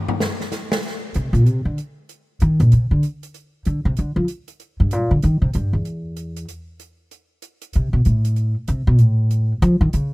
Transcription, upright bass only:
1.15 1.32 C3 medium
1.33 1.46 A#2 medium
1.46 1.65 C3 medium
1.65 1.77 D3 medium
2.42 2.59 D#3 medium
2.60 2.71 A#2 medium
2.73 2.90 C3 medium
2.91 3.03 D3 medium
3.67 3.85 D3 medium
3.85 3.97 C3 medium
3.99 4.15 D3 medium
4.16 4.23 F3 medium
4.80 4.94 G2 medium
4.93 5.10 A#2 medium
5.11 5.22 D3 medium
5.24 5.41 D#3 medium
5.42 5.53 C3 medium
5.55 5.73 G2 medium
5.73 6.44 E2 medium
7.75 7.92 C3 medium
7.93 8.05 B2 medium
8.06 8.53 A2 medium
8.68 8.87 C3 medium
8.87 9.00 B2 medium
9.00 9.51 A2 medium
9.62 9.80 F3 loud
9.81 9.93 D#3 medium
9.94 10.14 C#3 medium

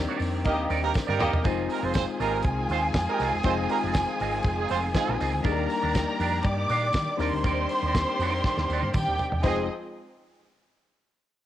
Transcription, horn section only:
0.45 0.54 A#3 medium
0.45 0.54 D#4 medium
0.45 0.54 G4 medium
0.45 0.54 A#4 medium
0.83 0.91 A#3 medium
0.83 0.91 D#4 loud
0.83 0.91 G4 loud
0.83 0.91 A#4 loud
1.08 1.43 A#3 loud
1.08 1.43 D#4 loud
1.08 1.44 G4 loud
1.08 1.43 A#4 loud
1.70 1.81 A#3 medium
1.70 1.81 D#4 medium
1.70 1.81 G4 medium
1.70 1.81 A#4 loud
1.84 1.93 C4 medium
1.84 1.93 F4 medium
1.84 1.93 G#4 medium
1.84 1.93 C5 medium
1.95 2.03 C4 loud
1.95 2.03 F4 medium
1.95 2.03 G#4 medium
1.95 2.03 C5 loud
2.20 2.40 A#3 loud
2.20 2.40 D#4 loud
2.20 2.40 G4 loud
2.20 2.40 A#4 loud
2.71 2.79 C4 medium
2.71 2.79 F4 medium
2.71 2.79 G#4 medium
2.71 2.79 C5 medium
3.08 3.28 A#3 loud
3.08 3.28 D#4 loud
3.08 3.28 G4 loud
3.08 3.28 A#4 loud
3.45 3.53 C4 loud
3.45 3.53 F4 loud
3.45 3.53 G#4 loud
3.45 3.53 C5 loud
3.70 3.78 A#3 medium
3.70 3.78 D#4 medium
3.70 3.78 G4 medium
3.70 3.78 A#4 loud
4.58 4.67 G#3 medium
4.58 4.67 D#4 medium
4.58 4.67 F4 medium
4.58 4.67 G#4 loud
4.70 4.78 C4 medium
4.70 4.78 F4 medium
4.70 4.78 G#4 medium
4.70 4.78 C5 medium
4.95 5.15 G#3 loud
4.95 5.15 D#4 loud
4.95 5.15 F4 loud
4.95 5.15 G#4 loud
9.44 9.62 F3 medium
9.44 9.61 G#3 medium
9.44 9.62 D#4 medium
9.44 9.61 G#4 medium

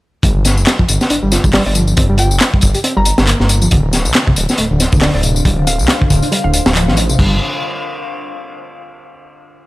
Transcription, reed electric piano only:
0.23 0.32 G3 medium
0.79 0.83 F3 medium
1.10 1.19 D4 medium
1.23 1.32 G3 loud
1.32 1.40 F4 medium
1.44 1.52 G3 medium
1.54 1.62 G3 loud
1.75 1.96 F3 medium
1.97 2.06 C4 loud
2.09 2.18 G3 loud
2.19 2.27 F4 medium
2.53 2.74 G3 medium
2.75 2.79 G4 medium
2.84 2.92 C4 loud
2.96 3.05 G3 loud
3.27 3.61 A#3 medium
3.62 3.71 F3 medium
3.71 3.79 D3 medium
4.27 4.31 C3 medium
4.58 4.66 A3 medium
4.71 4.80 D3 loud
4.80 4.88 C4 medium
4.92 5.01 D3 medium
5.02 5.10 D3 loud
5.24 5.44 C3 medium
5.45 5.53 G3 loud
5.58 5.67 D3 loud
5.67 5.75 C4 medium
6.01 6.22 D3 medium
6.23 6.26 D4 medium
6.32 6.40 G3 loud
6.45 6.53 D3 loud
6.75 7.08 F3 medium
7.10 7.19 C3 medium
7.19 7.39 G3 medium

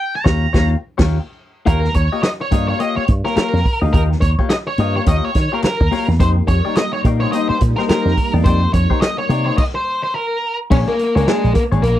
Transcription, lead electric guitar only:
0.00 0.14 G5 medium
0.15 0.68 A#5 medium
1.67 1.94 A#4 medium
1.95 2.22 C#5 medium
2.23 2.28 D#5 loud
2.41 2.67 C#5 medium
2.68 2.80 C#5 medium
2.80 2.96 D#5 loud
2.96 3.04 C#5 medium
3.25 3.36 A#4 medium
3.37 3.79 A#4 medium
3.93 4.01 A#4 medium
4.21 4.29 C#5 medium
4.49 4.54 D#5 medium
4.67 4.95 C#5 medium
4.96 5.01 C#5 medium
5.08 5.25 D#5 medium
5.25 5.53 C#5 medium
5.54 5.59 A#4 medium
5.65 6.06 A#4 medium
6.20 6.28 C5 medium
6.48 6.74 C#5 medium
6.76 6.93 D#5 loud
6.93 7.01 C#5 medium
7.20 7.32 C#5 medium
7.32 7.49 D#5 loud
7.49 7.57 C5 medium
7.76 7.81 A#4 medium
7.89 8.31 A#4 medium
8.44 8.73 C5 medium
8.73 9.01 C#5 medium
9.01 9.18 D#5 loud
9.18 9.45 C#5 medium
9.46 9.57 C#5 medium
9.58 9.63 D#5 medium
9.75 10.02 C5 medium
10.03 10.14 C5 medium
10.14 10.56 A#4 medium
10.71 10.76 C#4 loud
10.88 11.15 A#3 loud
11.16 11.27 A#3 medium
11.27 11.54 G#3 medium
11.54 11.62 A#3 medium
11.82 11.99 A#3 medium

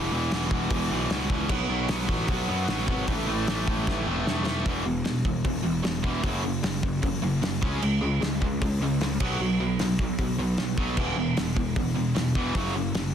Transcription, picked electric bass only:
0.00 0.10 E1 loud
0.12 0.30 E1 medium
0.32 0.50 E1 loud
0.51 0.69 E1 loud
0.71 0.89 E1 loud
0.91 1.09 B1 medium
1.09 1.47 C#2 medium
1.50 1.68 B1 loud
1.69 1.87 B1 loud
1.89 2.07 B1 loud
2.09 2.27 A1 loud
2.28 2.47 B1 loud
2.49 2.67 F#2 medium
2.68 2.87 A1 loud
2.88 3.07 G#1 medium
3.08 3.27 A1 loud
3.28 3.46 A1 medium
3.48 3.66 A1 loud
3.67 3.86 A1 medium
3.88 4.06 A1 loud
4.06 4.25 E1 loud
4.27 4.64 E1 medium
4.66 4.84 E1 medium
4.85 5.04 E1 medium
5.05 5.24 E1 loud
5.25 5.44 E1 medium
5.45 5.64 E1 loud
5.64 5.83 E1 medium
5.84 6.03 E1 medium
6.04 6.23 E1 medium
6.24 6.61 F#1 medium
6.63 6.82 F#1 medium
6.83 7.02 F#1 medium
7.03 7.21 F#1 loud
7.22 7.41 F#1 medium
7.42 7.61 F#1 medium
7.63 7.81 C#2 medium
7.82 8.01 C#2 medium
8.03 8.21 C#2 medium
8.22 8.40 C#2 loud
8.42 8.60 C#2 medium
8.62 8.80 C#2 loud
8.80 8.99 C#2 medium
9.01 9.19 C#2 medium
9.20 9.39 B1 medium
9.40 9.77 B1 medium
9.79 9.98 B1 loud
9.99 10.18 B1 medium
10.19 10.37 B1 medium
10.38 10.57 B1 medium
10.58 10.77 B1 loud
10.78 10.96 B1 medium
10.98 11.16 E1 medium
11.17 11.36 E1 medium
11.37 11.55 E1 medium
11.57 11.75 E1 medium
11.76 11.95 E1 loud
11.96 12.15 E1 medium
12.16 12.34 E1 medium
12.35 12.54 E1 medium
12.55 12.92 F#1 medium
12.94 13.13 F#1 loud

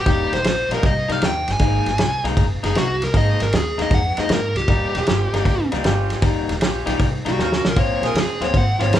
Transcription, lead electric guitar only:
0.00 0.32 G4 medium
0.34 0.70 C5 medium
0.74 0.85 A#4 medium
0.86 1.12 D#5 loud
1.12 1.23 F5 medium
1.25 1.49 G5 medium
1.52 2.25 G#5 medium
2.65 2.77 G#4 loud
2.77 3.02 F#4 medium
3.04 3.15 A#4 medium
3.17 3.41 D#5 medium
3.42 3.56 A#4 medium
3.56 3.80 G#4 medium
3.82 3.93 D#5 medium
3.94 4.18 F#5 loud
4.20 4.31 D#5 medium
4.32 4.57 A#4 medium
4.57 5.69 G4 medium
7.29 7.40 F#4 loud
7.41 7.65 F#4 medium
7.67 7.78 A#4 medium
7.80 8.06 C#5 medium
8.06 8.20 A#4 medium
8.20 8.43 G#4 medium
8.45 8.55 C#5 loud
8.57 8.81 F#5 loud
8.82 8.97 C#5 medium

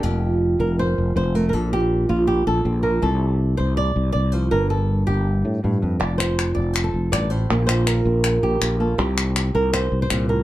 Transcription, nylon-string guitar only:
0.03 1.53 F2 medium
0.03 0.78 G4 medium
0.60 0.79 A#4 medium
0.79 1.15 C5 loud
1.16 1.35 C5 medium
1.35 1.51 A3 medium
1.35 1.48 A#4 medium
1.49 1.72 A4 loud
1.49 1.53 A#4 medium
1.54 3.03 A#2 medium
1.73 2.09 G4 medium
2.09 2.27 F4 medium
2.27 2.46 G4 loud
2.47 2.82 A4 loud
2.65 3.00 C4 soft
2.83 3.00 F3 medium
2.83 3.02 A#4 medium
3.02 4.33 C3 medium
3.02 3.77 A4 loud
3.57 3.77 C5 medium
3.77 4.11 D5 loud
4.12 4.32 D5 loud
4.32 4.50 F3 medium
4.32 4.51 C5 medium
4.51 5.63 G2 medium
4.51 4.70 A#4 medium
4.70 5.06 A4 medium
5.07 5.99 G4 medium
5.64 5.82 A2 medium
5.82 6.00 G2 medium
6.00 7.11 F2 medium
6.00 6.17 D5 loud
6.18 6.54 C5 medium
6.55 6.73 D5 medium
6.73 7.12 C5 loud
6.84 7.50 A4 medium
7.12 7.30 G2 medium
7.12 7.30 D5 loud
7.30 7.50 A2 medium
7.30 7.65 C5 medium
7.50 8.99 A#2 medium
7.50 8.79 A#3 soft
7.50 8.06 C4 soft
7.67 7.87 C5 medium
7.87 8.62 A#4 medium
8.07 8.43 C4 soft
8.43 8.80 G4 loud
8.62 9.54 F4 soft
8.80 8.97 A#3 medium
8.80 8.98 A4 medium
8.98 10.29 C3 medium
8.98 9.92 G4 medium
9.55 9.73 A#4 medium
9.73 10.01 C5 medium
10.02 10.29 C5 medium
10.10 10.29 A#2 medium
10.29 10.43 A2 medium
10.29 10.43 A#4 medium

